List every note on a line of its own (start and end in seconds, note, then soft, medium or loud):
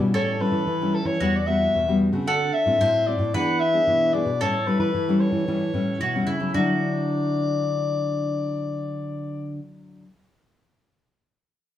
0.00 0.12 B2 medium
0.00 0.14 B2 medium
0.00 0.35 G3 medium
0.00 0.35 C#4 medium
0.00 0.36 E4 medium
0.00 0.17 B4 medium
0.14 0.36 A2 loud
0.14 0.65 A2 medium
0.14 1.17 A4 loud
0.14 0.43 C#5 loud
0.40 0.65 G3 medium
0.40 0.65 C#4 medium
0.40 0.65 E4 medium
0.40 0.96 B4 loud
0.52 0.64 E3 medium
0.67 1.01 E3 medium
0.67 1.18 E3 medium
0.81 1.17 G3 medium
0.81 1.17 C#4 medium
0.81 1.17 E4 medium
0.94 1.07 A4 medium
1.05 1.17 E3 medium
1.05 1.37 C#5 medium
1.20 1.66 E2 loud
1.20 1.71 E3 medium
1.20 1.36 G3 medium
1.20 1.37 B3 medium
1.20 2.27 F#4 medium
1.20 1.37 F#4 medium
1.36 1.48 D5 medium
1.47 1.83 G3 medium
1.47 1.83 B3 medium
1.47 1.83 F#4 medium
1.47 2.00 E5 loud
1.74 2.08 E2 medium
1.74 2.25 B2 medium
1.88 2.10 G3 medium
1.88 2.10 B3 medium
1.88 2.11 F#4 medium
2.12 2.28 C#3 medium
2.12 2.49 A3 medium
2.12 2.49 C4 medium
2.12 2.49 F#4 medium
2.27 2.50 D3 loud
2.27 2.78 D3 medium
2.27 2.82 A4 loud
2.27 2.55 F#5 loud
2.53 3.08 E5 loud
2.66 2.78 A2 medium
2.66 3.03 A3 medium
2.66 3.03 C4 medium
2.66 3.03 F#4 medium
2.81 3.15 A2 medium
2.81 3.32 A2 medium
2.81 3.34 C5 loud
3.07 3.23 A3 medium
3.07 3.23 C4 medium
3.07 3.23 F#4 medium
3.07 3.36 D5 medium
3.19 3.31 A2 medium
3.34 3.80 E3 loud
3.34 3.85 E3 medium
3.34 3.60 B3 medium
3.34 3.60 D4 medium
3.34 3.60 G#4 medium
3.34 4.44 B4 loud
3.34 3.61 F#5 loud
3.60 4.15 E5 loud
3.73 4.09 B3 medium
3.73 4.10 D4 medium
3.73 4.10 G#4 medium
3.87 4.39 B2 medium
3.87 4.21 E3 medium
4.13 4.29 B3 medium
4.13 4.30 D4 medium
4.13 4.30 G#4 medium
4.13 4.43 D5 medium
4.26 4.41 B2 medium
4.41 4.64 A2 loud
4.41 4.92 A2 medium
4.41 4.57 G3 medium
4.41 4.57 C#4 medium
4.41 4.57 E4 medium
4.41 6.00 A4 loud
4.41 4.68 C#5 loud
4.67 4.92 G3 medium
4.67 4.93 C#4 medium
4.67 4.93 E4 medium
4.67 4.79 B4 medium
4.79 4.91 E3 medium
4.79 5.22 B4 medium
4.94 5.28 E3 medium
4.94 5.45 E3 medium
5.08 5.44 G3 medium
5.08 5.44 C#4 medium
5.08 5.44 E4 medium
5.20 6.27 C#5 medium
5.32 5.44 E3 medium
5.48 5.98 A2 medium
5.48 5.71 E3 loud
5.48 5.63 G3 medium
5.48 5.64 C#4 medium
5.48 5.64 E4 medium
5.73 5.98 A2 medium
5.73 5.99 G3 medium
5.73 5.99 C#4 medium
5.73 6.00 E4 medium
6.01 6.26 B2 medium
6.01 6.52 E3 medium
6.01 6.26 F#4 medium
6.15 6.37 G3 medium
6.15 6.37 C#4 medium
6.15 6.38 E4 medium
6.27 6.51 C#3 medium
6.27 6.52 E4 medium
6.40 6.54 F#3 medium
6.40 6.56 A3 medium
6.40 6.58 E4 medium
6.53 10.03 D3 medium
6.53 9.59 D3 medium
6.53 10.05 F#3 medium
6.53 9.59 F#4 medium
6.53 9.59 D5 loud
6.57 10.07 A3 medium
6.57 10.09 E4 medium